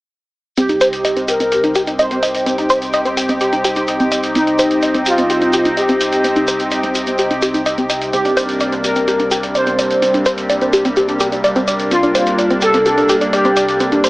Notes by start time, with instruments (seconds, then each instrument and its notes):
0.57 detuned saw bass C2, analog synth pad C3 C4 D#4 G4, synth arpeggio sound C4, analog polysynth G4, closed hi-hat, shaker
0.69 synth arpeggio sound D#4, closed hi-hat, shaker
0.81 synth arpeggio sound C5, closed hi-hat, shaker
0.93 closed hi-hat, shaker
1.05 synth arpeggio sound D#5, closed hi-hat, shaker
1.16 synth arpeggio sound C4, closed hi-hat, shaker
1.28 synth arpeggio sound G4, analog polysynth A#4, closed hi-hat, shaker
1.40 synth arpeggio sound C4, closed hi-hat, shaker
1.52 synth arpeggio sound G4, closed hi-hat, shaker
1.64 synth arpeggio sound D#4, closed hi-hat, shaker
1.75 synth arpeggio sound G4, closed hi-hat, shaker
1.87 synth arpeggio sound D#4, closed hi-hat, shaker
1.99 analog polysynth C5, synth arpeggio sound D#5, closed hi-hat, shaker
2.11 synth arpeggio sound C4, closed hi-hat, shaker
2.23 synth arpeggio sound D#5, closed hi-hat, shaker
2.35 closed hi-hat, shaker
2.46 synth arpeggio sound C4, closed hi-hat, shaker
2.58 synth arpeggio sound D#4, closed hi-hat, shaker
2.70 synth arpeggio sound C5, closed hi-hat, shaker
2.82 closed hi-hat, shaker
2.93 synth arpeggio sound D#5, closed hi-hat, shaker
3.05 synth arpeggio sound C4, closed hi-hat, shaker
3.17 synth arpeggio sound G4, closed hi-hat, shaker
3.29 synth arpeggio sound C4, closed hi-hat, shaker
3.40 synth arpeggio sound G4, closed hi-hat, shaker
3.53 synth arpeggio sound D#4, closed hi-hat, shaker
3.64 synth arpeggio sound G4, closed hi-hat, shaker
3.76 synth arpeggio sound D#4, closed hi-hat, shaker
3.87 synth arpeggio sound D#5, closed hi-hat, shaker
4.00 synth arpeggio sound C4, closed hi-hat, shaker
4.12 synth arpeggio sound D#5, closed hi-hat, shaker
4.23 closed hi-hat, shaker
4.35 synth arpeggio sound C4, analog polysynth D#4, closed hi-hat, shaker
4.47 synth arpeggio sound D#4, closed hi-hat, shaker
4.59 synth arpeggio sound C5, closed hi-hat, shaker
4.71 closed hi-hat, shaker
4.82 synth arpeggio sound D#5, closed hi-hat, shaker
4.94 synth arpeggio sound C4, closed hi-hat, shaker
5.06 analog polysynth F4, synth arpeggio sound G4, closed hi-hat, shaker
5.18 synth arpeggio sound C4, closed hi-hat, shaker
5.30 synth arpeggio sound G4, closed hi-hat, shaker
5.41 synth arpeggio sound D#4, closed hi-hat, shaker
5.53 synth arpeggio sound G4, closed hi-hat, shaker
5.65 synth arpeggio sound D#4, closed hi-hat, shaker
5.77 analog polysynth G4, synth arpeggio sound D#5, closed hi-hat, shaker
5.89 synth arpeggio sound C4, closed hi-hat, shaker
6.01 synth arpeggio sound D#5, closed hi-hat, shaker
6.12 closed hi-hat, shaker
6.24 synth arpeggio sound C4, closed hi-hat, shaker
6.36 synth arpeggio sound D#4, closed hi-hat, shaker
6.47 synth arpeggio sound C5, closed hi-hat, shaker
6.60 closed hi-hat, shaker
6.71 synth arpeggio sound D#5, closed hi-hat, shaker
6.83 synth arpeggio sound C4, closed hi-hat, shaker
6.95 synth arpeggio sound G4, closed hi-hat, shaker
7.07 synth arpeggio sound C4, closed hi-hat, shaker
7.18 synth arpeggio sound G4, closed hi-hat, shaker
7.30 synth arpeggio sound D#4, closed hi-hat, shaker
7.42 synth arpeggio sound G4, closed hi-hat, shaker
7.54 synth arpeggio sound D#4, closed hi-hat, shaker
7.66 synth arpeggio sound D#5, closed hi-hat, shaker
7.78 synth arpeggio sound C4, closed hi-hat, shaker
7.90 synth arpeggio sound D#5, closed hi-hat, shaker
8.02 closed hi-hat, shaker
8.13 detuned saw bass C2, analog synth pad G3 A#3 D4, synth arpeggio sound C4, analog polysynth G4, closed hi-hat, shaker
8.25 synth arpeggio sound D4, closed hi-hat, shaker
8.37 synth arpeggio sound C5, closed hi-hat, shaker
8.49 closed hi-hat, shaker
8.60 synth arpeggio sound D5, closed hi-hat, shaker
8.72 synth arpeggio sound C4, closed hi-hat, shaker
8.84 synth arpeggio sound G4, analog polysynth A#4, closed hi-hat, shaker
8.96 synth arpeggio sound C4, closed hi-hat, shaker
9.08 synth arpeggio sound G4, closed hi-hat, shaker
9.19 synth arpeggio sound D4, closed hi-hat, shaker
9.31 synth arpeggio sound G4, closed hi-hat, shaker
9.43 synth arpeggio sound D4, closed hi-hat, shaker
9.55 analog polysynth C5, synth arpeggio sound D5, closed hi-hat, shaker
9.67 synth arpeggio sound C4, closed hi-hat, shaker
9.79 synth arpeggio sound D5, closed hi-hat, shaker
9.91 closed hi-hat, shaker
10.02 synth arpeggio sound C4, closed hi-hat, shaker
10.14 synth arpeggio sound D4, closed hi-hat, shaker
10.26 synth arpeggio sound C5, closed hi-hat, shaker
10.38 closed hi-hat, shaker
10.49 synth arpeggio sound D5, closed hi-hat, shaker
10.61 synth arpeggio sound C4, closed hi-hat, shaker
10.73 synth arpeggio sound G4, closed hi-hat, shaker
10.85 synth arpeggio sound C4, closed hi-hat, shaker
10.97 synth arpeggio sound G4, closed hi-hat, shaker
11.08 synth arpeggio sound D4, closed hi-hat, shaker
11.20 synth arpeggio sound G4, closed hi-hat, shaker
11.32 synth arpeggio sound D4, closed hi-hat, shaker
11.44 synth arpeggio sound D5, closed hi-hat, shaker
11.56 synth arpeggio sound C4, closed hi-hat, shaker
11.68 synth arpeggio sound D5, closed hi-hat, shaker
11.79 closed hi-hat, shaker
11.91 synth arpeggio sound C4, analog polysynth F4, closed hi-hat, shaker
12.03 synth arpeggio sound D4, closed hi-hat, shaker
12.15 synth arpeggio sound C5, closed hi-hat, shaker
12.26 closed hi-hat, shaker
12.38 synth arpeggio sound D5, closed hi-hat, shaker
12.50 synth arpeggio sound C4, closed hi-hat, shaker
12.61 synth arpeggio sound G4, analog polysynth A4, closed hi-hat, shaker
12.73 synth arpeggio sound C4, closed hi-hat, shaker
12.86 synth arpeggio sound G4, closed hi-hat, shaker
12.98 synth arpeggio sound D4, closed hi-hat, shaker
13.09 synth arpeggio sound G4, closed hi-hat, shaker
13.21 synth arpeggio sound D4, closed hi-hat, shaker
13.33 analog polysynth G4, synth arpeggio sound D5, closed hi-hat, shaker
13.45 synth arpeggio sound C4, closed hi-hat, shaker
13.56 synth arpeggio sound D5, closed hi-hat, shaker
13.68 closed hi-hat, shaker
13.80 synth arpeggio sound C4, closed hi-hat, shaker
13.92 synth arpeggio sound D4, closed hi-hat, shaker
14.04 synth arpeggio sound C5, closed hi-hat, shaker